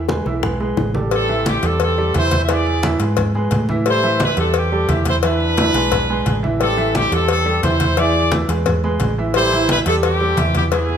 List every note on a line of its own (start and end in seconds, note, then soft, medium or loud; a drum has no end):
0.00 0.20 E2 loud
0.09 0.23 G#3 medium
0.09 0.23 G#4 medium
0.09 0.23 B4 medium
0.09 high bongo medium
0.09 high conga medium
0.26 0.74 B1 medium
0.26 0.40 E3 medium
0.26 0.40 E4 medium
0.26 0.41 E5 medium
0.26 high bongo soft
0.26 high conga soft
0.43 0.57 G#3 medium
0.43 0.57 G#4 medium
0.43 0.58 B4 medium
0.43 high bongo medium
0.43 high conga soft
0.43 low conga medium
0.60 0.88 G#3 medium
0.60 0.89 G#4 medium
0.60 0.89 B4 medium
0.60 high conga soft
0.77 1.57 A1 loud
0.77 high bongo soft
0.77 low bongo medium
0.77 high conga medium
0.95 1.09 G3 medium
0.95 1.09 G4 medium
0.95 1.09 A4 medium
0.95 high bongo soft
0.95 high conga medium
1.11 1.26 G3 medium
1.11 1.45 C4 medium
1.11 1.26 G4 medium
1.11 1.26 A4 medium
1.11 1.45 A4 loud
1.11 cowbell loud
1.11 high conga soft
1.29 1.57 E3 medium
1.29 1.57 E4 medium
1.29 1.58 E5 medium
1.29 high conga soft
1.46 1.63 C4 medium
1.46 1.63 G4 medium
1.46 cowbell medium
1.46 high conga loud
1.63 2.11 E2 loud
1.63 1.92 G3 medium
1.63 1.82 C4 medium
1.63 1.91 G4 medium
1.63 1.92 A4 medium
1.63 1.81 A4 medium
1.63 cowbell medium
1.63 high conga soft
1.80 2.14 C4 medium
1.80 2.13 A4 medium
1.80 cowbell loud
1.80 high conga soft
1.98 2.12 G3 medium
1.98 2.12 G4 medium
1.98 2.12 A4 medium
1.98 high conga soft
2.14 2.95 E2 loud
2.14 2.43 E3 medium
2.14 2.43 E4 medium
2.14 2.41 E4 medium
2.14 2.41 C5 loud
2.14 2.43 E5 medium
2.14 cowbell medium
2.14 high conga medium
2.31 cowbell medium
2.31 high conga medium
2.43 2.50 E5 medium
2.49 2.77 E3 loud
2.49 2.78 E4 loud
2.49 2.84 G#4 medium
2.49 2.84 D5 loud
2.49 2.78 E5 medium
2.49 cowbell loud
2.49 high conga soft
2.66 high conga soft
2.83 2.98 E3 medium
2.83 2.98 E4 loud
2.83 2.98 E5 medium
2.83 cowbell medium
2.83 high conga loud
3.00 3.48 G#2 loud
3.00 3.29 G#3 medium
3.00 3.29 G#4 medium
3.00 3.29 B4 medium
3.00 cowbell medium
3.00 high conga soft
3.17 cowbell loud
3.17 high conga soft
3.17 low conga medium
3.35 3.63 G#3 medium
3.35 3.63 G#4 medium
3.35 3.63 B4 medium
3.35 high conga soft
3.51 4.32 A2 loud
3.51 cowbell medium
3.51 high conga loud
3.69 3.83 E3 medium
3.69 3.83 E4 medium
3.69 3.83 E5 medium
3.69 high conga medium
3.86 4.00 G3 medium
3.86 4.19 E4 medium
3.86 4.00 G4 medium
3.86 4.00 A4 medium
3.86 4.19 C5 loud
3.86 cowbell loud
3.86 high conga soft
4.03 4.32 E3 loud
4.03 4.32 E4 medium
4.03 4.32 E5 loud
4.03 high conga soft
4.20 4.37 E4 medium
4.20 4.37 B4 loud
4.20 cowbell medium
4.20 high conga loud
4.37 4.85 E2 loud
4.37 4.65 G3 medium
4.37 4.54 C4 medium
4.37 4.66 G4 medium
4.37 4.66 A4 medium
4.37 4.54 A4 medium
4.37 cowbell medium
4.37 high conga soft
4.54 5.04 C4 medium
4.54 5.04 G4 medium
4.54 cowbell loud
4.54 high conga soft
4.72 4.86 G3 medium
4.72 4.86 G4 medium
4.72 4.86 A4 medium
4.72 high conga soft
4.89 5.69 E2 loud
4.89 5.17 E3 medium
4.89 5.17 E4 medium
4.89 5.17 E5 medium
4.89 cowbell medium
4.89 high conga medium
5.05 5.15 E4 medium
5.05 5.15 C5 loud
5.05 cowbell medium
5.05 high conga medium
5.23 5.52 E3 loud
5.23 6.40 D4 medium
5.23 5.52 E4 medium
5.23 6.40 B4 loud
5.23 5.52 E5 medium
5.23 cowbell loud
5.23 high conga soft
5.40 high conga soft
5.57 5.72 E3 medium
5.57 5.72 E4 medium
5.57 5.72 E5 medium
5.57 cowbell medium
5.57 high conga loud
5.74 6.22 B1 loud
5.74 6.03 G#3 medium
5.74 6.03 G#4 medium
5.74 6.03 B4 medium
5.74 cowbell medium
5.74 high conga soft
5.92 cowbell loud
5.92 high conga soft
5.92 low conga medium
6.09 6.38 G#3 medium
6.09 6.38 G#4 medium
6.09 6.38 B4 medium
6.09 high conga soft
6.26 7.06 A1 loud
6.26 cowbell medium
6.26 high conga medium
6.43 6.57 E3 medium
6.43 6.57 E4 medium
6.43 6.57 E5 medium
6.43 high conga medium
6.60 6.74 G3 medium
6.60 6.93 C4 medium
6.60 6.74 G4 medium
6.60 6.74 A4 medium
6.60 6.93 A4 loud
6.60 cowbell loud
6.60 high conga soft
6.77 7.05 E3 medium
6.77 7.06 E4 medium
6.77 7.06 E5 medium
6.77 high conga soft
6.95 7.12 C4 medium
6.95 7.11 G4 loud
6.95 cowbell medium
6.95 high conga medium
7.12 7.60 E2 loud
7.12 7.40 G3 medium
7.12 7.29 C4 medium
7.12 7.40 G4 medium
7.12 7.40 A4 medium
7.12 7.28 A4 medium
7.12 cowbell medium
7.12 high conga soft
7.28 7.62 C4 medium
7.28 7.61 A4 medium
7.28 cowbell loud
7.28 high conga soft
7.46 7.60 G3 medium
7.46 7.60 G4 medium
7.46 7.60 A4 medium
7.46 high conga soft
7.63 8.43 E2 loud
7.63 7.91 E3 medium
7.63 7.91 E4 medium
7.63 7.96 E4 medium
7.63 7.95 C5 loud
7.63 7.92 E5 medium
7.63 cowbell medium
7.63 high conga medium
7.80 cowbell medium
7.80 high conga medium
7.97 8.26 E3 medium
7.97 8.26 E4 medium
7.97 8.32 G#4 medium
7.97 8.32 D5 loud
7.97 8.26 E5 medium
7.97 cowbell loud
7.97 high conga soft
8.15 high conga soft
8.32 8.46 E3 medium
8.32 8.46 E4 medium
8.32 8.46 E5 medium
8.32 cowbell medium
8.32 high conga loud
8.49 8.97 E2 loud
8.49 8.77 G#3 medium
8.49 8.78 G#4 medium
8.49 8.78 B4 medium
8.49 cowbell medium
8.49 high conga soft
8.66 cowbell loud
8.66 high conga soft
8.66 low conga medium
8.84 9.12 G#3 medium
8.84 9.12 G#4 medium
8.84 9.12 B4 medium
8.84 high conga soft
9.00 9.80 A1 loud
9.00 cowbell medium
9.00 high conga medium
9.18 9.32 E3 medium
9.18 9.32 E4 medium
9.18 9.32 E5 medium
9.34 9.49 G3 medium
9.34 9.67 E4 loud
9.34 9.49 G4 medium
9.34 9.49 A4 medium
9.34 9.67 C5 loud
9.34 cowbell loud
9.34 high conga soft
9.52 9.80 E3 loud
9.52 9.80 E4 medium
9.52 9.81 E5 loud
9.52 high conga soft
9.69 9.79 E4 medium
9.69 9.78 B4 loud
9.69 cowbell medium
9.69 high conga loud
9.86 10.34 E2 loud
9.86 10.15 G3 medium
9.86 9.96 C4 medium
9.86 10.15 G4 medium
9.86 9.95 A4 medium
9.86 10.15 A4 medium
9.86 cowbell medium
9.86 high conga soft
10.03 10.52 C4 medium
10.03 10.52 G4 loud
10.03 cowbell loud
10.03 high conga soft
10.20 10.35 G3 medium
10.20 10.35 G4 medium
10.20 10.35 A4 medium
10.20 high conga soft
10.37 10.97 E2 loud
10.37 10.66 E3 medium
10.37 10.66 E4 medium
10.37 10.66 E5 medium
10.37 cowbell medium
10.37 high conga loud
10.54 10.64 B3 medium
10.54 10.63 G4 medium
10.54 cowbell medium
10.54 high conga medium
10.71 10.97 E3 medium
10.71 10.97 B3 medium
10.71 10.97 E4 medium
10.71 10.97 G#4 medium
10.71 10.97 E5 medium
10.71 cowbell loud
10.71 high conga soft
10.89 high conga soft